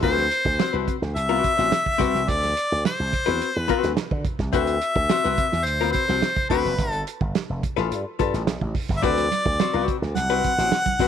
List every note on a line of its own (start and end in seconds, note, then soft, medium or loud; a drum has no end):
0.00 0.27 D2 medium
0.00 0.25 C4 medium
0.00 0.16 F#4 medium
0.00 0.25 F#4 medium
0.00 0.16 A4 medium
0.00 0.25 B4 medium
0.00 0.84 C5 medium
0.00 kick loud
0.00 closed hi-hat medium
0.17 snare soft
0.31 closed hi-hat medium
0.45 0.58 D2 medium
0.45 kick medium
0.59 0.73 C4 medium
0.59 0.72 F#4 medium
0.59 0.72 C5 medium
0.59 snare loud
0.59 closed hi-hat medium
0.73 0.86 C2 medium
0.73 0.96 C4 medium
0.73 0.96 F#4 medium
0.73 0.95 B4 medium
0.88 kick medium
0.88 closed hi-hat medium
1.02 1.14 D2 medium
1.02 snare soft
1.16 1.40 C2 loud
1.16 2.31 E5 loud
1.16 closed hi-hat medium
1.29 1.52 C4 medium
1.29 1.52 F#4 medium
1.29 1.51 B4 medium
1.44 kick medium
1.44 closed hi-hat medium
1.57 1.70 A1 medium
1.57 1.76 C4 medium
1.57 1.75 F#4 soft
1.57 1.75 C5 medium
1.57 snare soft
1.72 snare loud
1.72 closed hi-hat medium
1.86 kick medium
1.98 2.12 C2 medium
1.98 2.21 C4 medium
1.98 2.22 F#4 medium
1.98 2.22 B4 medium
1.98 kick medium
1.98 closed hi-hat medium
2.15 2.27 C2 loud
2.15 snare soft
2.28 2.53 D2 medium
2.28 2.85 D5 medium
2.28 kick loud
2.28 closed hi-hat medium
2.43 snare soft
2.43 closed hi-hat medium
2.57 closed hi-hat medium
2.72 2.84 D2 medium
2.85 3.58 C5 medium
2.85 snare medium
2.85 closed hi-hat medium
3.00 3.11 C2 medium
3.13 kick medium
3.13 closed hi-hat medium
3.26 3.40 E2 medium
3.26 3.49 C4 medium
3.26 3.49 F#4 medium
3.26 3.48 B4 medium
3.26 snare soft
3.42 closed hi-hat medium
3.56 3.68 E2 medium
3.56 3.94 B4 medium
3.68 3.91 C4 medium
3.68 3.91 F#4 loud
3.68 3.92 B4 loud
3.68 kick medium
3.68 closed hi-hat medium
3.83 3.96 D2 medium
3.83 snare soft
3.83 closed hi-hat medium
3.97 snare medium
3.97 closed hi-hat medium
4.11 4.24 D3 loud
4.11 kick medium
4.25 kick loud
4.25 closed hi-hat medium
4.39 4.52 C2 medium
4.39 kick medium
4.39 snare soft
4.53 4.78 D2 medium
4.53 4.75 C4 medium
4.53 4.76 F#4 medium
4.53 4.76 B4 medium
4.53 5.66 E5 loud
4.53 kick loud
4.53 closed hi-hat medium
4.67 closed hi-hat medium
4.81 closed hi-hat medium
4.96 5.08 D2 medium
4.96 kick medium
5.09 5.25 C4 medium
5.09 5.24 F#4 medium
5.09 5.24 C5 medium
5.09 snare loud
5.09 closed hi-hat medium
5.24 5.37 C2 medium
5.24 5.47 C4 medium
5.24 5.47 F#4 medium
5.24 5.46 B4 medium
5.38 kick medium
5.38 closed hi-hat medium
5.52 5.67 E2 medium
5.52 snare soft
5.65 5.91 D2 loud
5.65 5.92 C5 medium
5.65 closed hi-hat medium
5.81 6.03 C4 medium
5.81 6.03 F#4 medium
5.81 6.03 B4 medium
5.92 6.46 C5 medium
5.92 kick medium
5.92 closed hi-hat medium
6.08 6.21 C2 medium
6.08 6.26 C4 soft
6.08 6.26 F#4 medium
6.08 6.26 C5 medium
6.08 snare soft
6.22 snare medium
6.22 closed hi-hat medium
6.37 kick loud
6.50 6.63 D2 medium
6.50 6.73 C4 medium
6.50 6.73 F#4 loud
6.50 6.92 B4 medium
6.50 6.73 B4 medium
6.50 kick medium
6.50 closed hi-hat medium
6.65 6.77 F#1 medium
6.65 snare soft
6.78 7.03 G1 medium
6.78 kick loud
6.78 closed hi-hat medium
6.92 7.03 A4 medium
6.92 closed hi-hat soft
7.07 closed hi-hat medium
7.21 7.33 G1 medium
7.21 kick loud
7.35 snare loud
7.35 closed hi-hat medium
7.50 7.62 F1 medium
7.63 kick medium
7.63 closed hi-hat medium
7.76 7.90 A1 medium
7.76 8.00 F4 medium
7.76 7.99 A4 medium
7.76 7.99 B4 medium
7.76 snare soft
7.91 8.04 G2 loud
7.91 closed hi-hat medium
8.19 8.32 G2 medium
8.19 8.41 F4 medium
8.19 8.42 A4 medium
8.19 8.42 B4 medium
8.19 kick medium
8.19 closed hi-hat medium
8.34 8.48 A1 medium
8.34 snare soft
8.34 closed hi-hat medium
8.47 8.60 B1 medium
8.47 snare loud
8.47 closed hi-hat medium
8.61 8.74 A1 medium
8.61 kick medium
8.75 kick loud
8.75 open hi-hat medium
8.89 9.02 G1 medium
8.89 kick medium
8.89 snare soft
8.97 9.05 E5 medium
9.02 9.28 D2 medium
9.02 9.25 C4 medium
9.02 9.26 F#4 medium
9.02 9.26 B4 medium
9.02 9.88 D5 medium
9.02 kick loud
9.02 closed hi-hat medium
9.02 low conga medium
9.18 snare soft
9.18 closed hi-hat medium
9.31 closed hi-hat medium
9.31 muted conga soft
9.31 high conga medium
9.46 9.58 D2 medium
9.46 kick medium
9.59 9.74 C4 medium
9.59 9.73 F#4 medium
9.59 9.73 C5 medium
9.59 snare loud
9.59 closed hi-hat medium
9.59 muted conga soft
9.59 high conga medium
9.73 9.86 C2 medium
9.73 9.97 C4 medium
9.73 9.96 F#4 medium
9.73 9.96 B4 medium
9.88 kick medium
9.88 closed hi-hat medium
10.02 10.14 D2 medium
10.02 snare soft
10.15 10.41 C2 loud
10.15 11.08 F#5 loud
10.15 closed hi-hat medium
10.15 muted conga soft
10.15 high conga medium
10.30 10.53 C4 medium
10.30 10.52 F#4 medium
10.30 10.52 B4 medium
10.44 kick medium
10.44 closed hi-hat medium
10.44 high conga medium
10.58 10.70 A1 medium
10.58 10.76 C4 soft
10.58 10.76 F#4 soft
10.58 10.75 C5 soft
10.58 snare soft
10.58 closed hi-hat medium
10.72 snare loud
10.72 closed hi-hat medium
10.86 kick medium
10.86 high conga medium
10.99 11.08 C2 medium
10.99 11.08 C4 medium
10.99 11.08 F#4 medium
10.99 11.08 B4 medium
10.99 kick loud
10.99 closed hi-hat medium
10.99 low conga medium